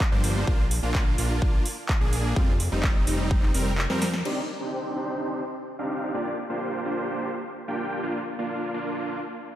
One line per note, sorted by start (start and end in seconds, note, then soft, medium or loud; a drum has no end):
0.00 kick loud
0.00 clap loud
0.12 0.45 G1 loud
0.12 0.45 F3 medium
0.12 0.45 G3 medium
0.12 0.45 A#3 medium
0.12 0.45 D4 medium
0.12 0.45 C5 medium
0.24 open hi-hat loud
0.47 0.81 A#1 loud
0.47 0.63 A#3 loud
0.47 0.63 D4 medium
0.47 0.63 F4 loud
0.47 kick loud
0.71 open hi-hat loud
0.83 1.16 A#1 loud
0.83 1.16 A#3 medium
0.83 1.16 D4 medium
0.83 1.15 F4 medium
0.95 kick loud
0.95 clap loud
1.18 1.60 A#1 loud
1.18 1.63 A#3 medium
1.18 1.63 D4 medium
1.18 1.63 F4 medium
1.18 open hi-hat loud
1.42 kick loud
1.66 open hi-hat loud
1.89 kick loud
1.89 clap loud
2.01 2.34 A#1 loud
2.01 2.34 A#3 medium
2.01 2.34 D4 medium
2.01 2.34 G#4 medium
2.13 open hi-hat loud
2.36 2.69 F1 loud
2.36 2.53 G3 loud
2.36 2.53 C4 medium
2.36 2.53 F4 loud
2.36 kick loud
2.60 open hi-hat loud
2.72 3.05 F1 medium
2.72 3.04 G3 medium
2.72 3.04 C4 medium
2.72 3.04 D#4 medium
2.83 kick loud
2.83 clap loud
3.07 3.52 F1 loud
3.07 3.52 G3 medium
3.07 3.52 C4 medium
3.07 3.52 D#4 medium
3.07 open hi-hat loud
3.31 kick loud
3.43 clap soft
3.54 3.88 F1 loud
3.54 3.71 G3 medium
3.54 3.71 C4 medium
3.54 3.71 A#4 loud
3.54 open hi-hat loud
3.78 clap loud
3.90 4.23 F2 loud
3.90 4.06 G3 loud
3.90 4.06 C4 medium
3.90 4.06 A#4 loud
3.90 snare medium
4.02 snare medium
4.02 open hi-hat loud
4.13 snare medium
4.25 4.41 C4 medium
4.25 4.41 D4 medium
4.25 4.41 D#4 medium
4.25 4.41 G4 medium
4.25 4.41 D5 loud
4.25 crash medium
4.61 4.93 C4 medium
4.61 4.93 D4 medium
4.61 4.93 D#4 medium
4.61 4.93 G4 medium
4.61 4.93 C5 medium
4.96 5.41 C4 medium
4.96 5.41 D4 medium
4.96 5.41 D#4 medium
4.96 5.41 G4 medium
4.96 5.41 C5 medium
5.79 6.12 C4 medium
5.79 6.12 D4 medium
5.79 6.12 D#4 medium
5.79 6.12 G4 medium
5.79 6.11 F5 medium
6.14 6.30 A#3 medium
6.14 6.30 D4 medium
6.14 6.30 F4 medium
6.14 6.30 G4 medium
6.14 6.30 D5 loud
6.50 6.82 A#3 medium
6.50 6.82 D4 medium
6.50 6.82 F4 medium
6.50 6.82 G4 medium
6.50 6.82 C5 medium
6.85 7.30 A#3 medium
6.85 7.30 D4 medium
6.85 7.30 F4 medium
6.85 7.30 G4 medium
6.85 7.30 C5 medium
7.68 8.01 A#3 medium
7.68 8.00 D4 medium
7.68 8.01 F4 medium
7.68 8.01 G4 medium
7.68 8.01 G5 medium
8.03 8.19 A#3 medium
8.03 8.19 D4 medium
8.03 8.19 F4 loud
8.39 8.71 A#3 medium
8.39 8.71 D4 medium
8.39 8.71 F4 medium
8.74 9.19 A#3 medium
8.74 9.19 D4 medium
8.74 9.19 F4 medium